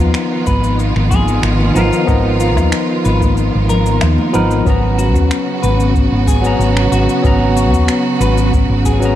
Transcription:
0.00 0.12 D#2 medium
0.00 4.62 D#3 medium
0.00 1.71 F3 medium
0.00 1.72 B3 medium
0.00 4.63 B3 medium
0.00 1.73 D#4 medium
0.00 0.12 F4 medium
0.00 4.63 F4 medium
0.00 1.74 A#5 medium
0.00 low conga medium
0.14 finger snap medium
0.14 cabasa soft
0.47 0.92 G#1 medium
0.47 0.76 B4 medium
0.47 kick medium
0.47 cabasa medium
0.64 cabasa soft
0.79 cabasa soft
0.96 1.39 G#1 medium
0.96 finger snap soft
1.11 1.42 G#4 medium
1.11 kick loud
1.11 high conga medium
1.11 low conga medium
1.11 cabasa medium
1.28 cabasa soft
1.43 1.70 G#1 medium
1.43 finger snap medium
1.43 cabasa soft
1.60 high conga medium
1.75 1.90 G#1 medium
1.75 2.04 F3 medium
1.75 2.05 B3 medium
1.75 2.05 D#4 medium
1.75 2.06 F4 loud
1.75 2.05 A#4 loud
1.75 low conga medium
1.75 cabasa medium
1.93 cabasa soft
2.05 2.58 G#1 loud
2.05 4.29 F3 medium
2.05 4.30 B3 medium
2.05 4.31 D#4 medium
2.05 kick loud
2.05 cabasa soft
2.10 4.31 A#5 medium
2.40 2.70 F4 medium
2.40 cabasa medium
2.57 2.70 D#2 medium
2.57 kick medium
2.57 low conga medium
2.57 cabasa soft
2.57 low woodblock medium
2.72 finger snap loud
2.72 cabasa soft
3.05 3.50 G#1 loud
3.05 3.34 B4 medium
3.05 cabasa medium
3.22 kick loud
3.22 high conga medium
3.22 cabasa soft
3.37 cabasa soft
3.55 3.98 G#1 medium
3.69 3.99 A#4 medium
3.69 low conga medium
3.69 cabasa medium
3.86 cabasa soft
4.01 4.16 D#2 loud
4.01 finger snap medium
4.01 cabasa soft
4.01 low woodblock medium
4.18 high conga medium
4.33 4.61 G#1 medium
4.33 4.62 F3 medium
4.33 4.62 B3 medium
4.33 4.63 D#4 medium
4.33 4.63 A#4 loud
4.33 4.65 B4 medium
4.33 low conga medium
4.33 cabasa medium
4.51 cabasa soft
4.64 5.16 G#1 medium
4.64 9.15 C#3 medium
4.64 6.40 F#3 medium
4.64 9.15 B3 medium
4.64 6.41 B3 medium
4.64 6.42 C#4 medium
4.64 9.15 F#4 medium
4.64 kick loud
4.64 cabasa soft
4.70 6.43 A#5 loud
4.98 5.28 F#4 medium
4.98 cabasa medium
5.16 5.28 D#2 medium
5.16 kick medium
5.16 cabasa soft
5.31 finger snap medium
5.31 cabasa soft
5.63 6.08 G#1 loud
5.63 5.92 B4 medium
5.63 cabasa medium
5.80 cabasa soft
5.95 kick loud
5.95 cabasa soft
6.12 6.56 G#1 medium
6.28 6.58 G#4 medium
6.28 kick loud
6.28 cabasa medium
6.42 7.19 F#3 medium
6.42 7.20 B3 medium
6.42 7.21 C#4 medium
6.42 cabasa soft
6.47 7.22 A#5 loud
6.59 6.86 G#1 medium
6.59 cabasa soft
6.77 finger snap medium
6.92 7.06 G#1 medium
6.92 7.23 F#4 loud
6.92 cabasa medium
7.09 cabasa soft
7.22 7.74 G#1 loud
7.22 8.98 F#3 loud
7.22 8.99 B3 medium
7.22 8.99 C#4 medium
7.22 kick loud
7.22 cabasa soft
7.27 9.00 A#5 loud
7.56 7.86 F#4 medium
7.56 cabasa medium
7.73 7.86 D#2 medium
7.73 kick medium
7.73 cabasa soft
7.88 finger snap medium
7.88 cabasa soft
8.20 8.65 G#1 loud
8.20 8.50 B4 medium
8.20 cabasa medium
8.38 cabasa soft
8.53 kick loud
8.53 cabasa soft
8.69 9.13 G#1 medium
8.86 9.15 G#4 medium
8.86 kick medium
8.86 cabasa medium
9.00 9.15 F#3 medium
9.00 9.15 B3 medium
9.00 9.15 C#4 medium
9.00 cabasa soft
9.05 9.15 A#5 medium

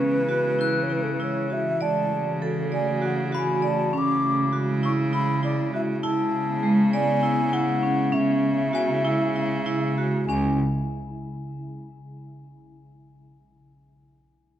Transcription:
0.00 1.81 C#3 medium
0.00 3.90 E3 medium
0.00 1.80 G#3 medium
0.00 0.15 C#4 medium
0.00 1.78 E4 medium
0.00 0.85 B4 medium
0.00 0.13 B6 soft
0.29 0.52 F#4 medium
0.59 0.82 E4 medium
0.59 2.09 F#6 medium
0.83 0.94 C#5 medium
0.90 1.13 E4 medium
0.90 1.05 B4 medium
1.03 1.14 A4 medium
1.13 1.22 B4 medium
1.20 1.43 E4 medium
1.20 1.54 C#5 medium
1.50 1.74 F#4 medium
1.50 1.83 E5 medium
1.81 3.94 C#3 medium
1.81 3.92 A3 medium
1.81 3.92 F#4 medium
1.81 2.27 D5 medium
1.81 3.92 D5 medium
1.81 2.43 A5 medium
2.42 2.65 A4 medium
2.72 2.95 D5 medium
2.72 3.07 G#5 medium
3.02 3.25 F#4 medium
3.02 3.35 F#5 medium
3.32 3.56 F#4 medium
3.32 4.21 B5 medium
3.37 3.70 G#5 medium
3.62 3.86 D5 medium
3.68 3.99 A5 medium
3.93 6.04 C#3 medium
3.93 6.02 C#3 medium
3.93 10.26 G#3 medium
3.93 4.39 C#4 medium
3.93 8.11 E4 medium
3.98 4.56 D6 medium
4.53 4.76 F#4 medium
4.83 5.06 E4 medium
4.83 4.92 C#6 medium
5.13 5.36 E4 medium
5.13 5.42 B5 loud
5.43 5.66 E4 medium
5.43 5.72 D5 medium
5.74 5.97 F#4 medium
5.74 5.81 E5 medium
6.03 8.13 C#3 medium
6.03 8.13 B3 medium
6.03 6.49 E4 medium
6.03 6.90 A5 loud
6.63 6.86 G#3 medium
6.93 7.17 D5 medium
6.93 7.55 G#5 medium
7.23 7.46 E4 medium
7.53 7.76 E4 medium
7.53 8.15 F#5 medium
7.83 8.06 C#4 medium
8.12 10.25 C#3 medium
8.12 10.27 C#3 medium
8.12 8.59 C#4 medium
8.12 10.27 E4 medium
8.12 9.98 E5 medium
8.73 8.97 F#4 medium
8.73 10.28 G#5 medium
9.05 9.28 E4 medium
9.36 9.59 E4 medium
9.66 9.90 E4 medium
9.98 10.22 F#4 medium
10.27 10.58 C#2 medium
10.27 10.57 C#4 medium
10.27 10.57 G#5 medium
10.27 12.37 G#5 soft

